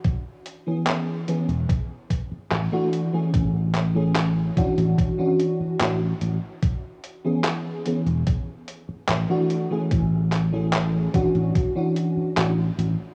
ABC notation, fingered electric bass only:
X:1
M:4/4
L:1/16
Q:1/4=73
K:Dlyd
V:1 name="Fingered electric bass" clef=bass
z6 z E,,, z4 A,,, z3 | A,,,6 z A,,, z4 A,,,2 A,,, z | z6 z E,,, z4 A,,, z3 | A,,,6 z A,,, z4 A,,,2 A,,, z |]